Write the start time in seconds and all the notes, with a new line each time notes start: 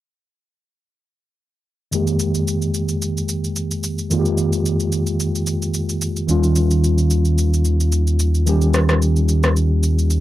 1.91 F2 D#3 G#3 A#3 G4, shaker
2.07 shaker
2.19 shaker
2.35 shaker
2.48 shaker
2.62 shaker
2.74 shaker
2.88 shaker
3.02 shaker
3.17 shaker
3.29 shaker
3.44 shaker
3.56 shaker
3.71 shaker
3.83 shaker
3.98 shaker
4.09 F2 D#3 G#3 A#3 F4, shaker
4.19 G4
4.25 shaker
4.38 shaker
4.53 shaker
4.66 shaker
4.80 shaker
4.92 shaker
5.07 shaker
5.20 shaker
5.35 shaker
5.47 shaker
5.62 shaker
5.74 shaker
5.89 shaker
6.01 shaker
6.16 shaker
6.28 D#2 D#3 G3 C#4 F4, shaker
6.43 shaker
6.56 shaker
6.71 shaker
6.84 shaker
6.98 shaker
7.10 shaker
7.25 shaker
7.38 shaker
7.54 shaker
7.65 shaker
7.80 shaker
7.92 shaker
8.07 shaker
8.19 shaker
8.35 shaker
8.46 D#3 G3 C#4 G4, shaker
8.61 shaker
8.74 cross-stick, shaker
8.89 cross-stick, shaker
9.02 shaker
9.16 shaker
9.29 shaker
9.43 cross-stick, shaker
9.56 shaker
9.83 shaker
9.99 shaker
10.10 shaker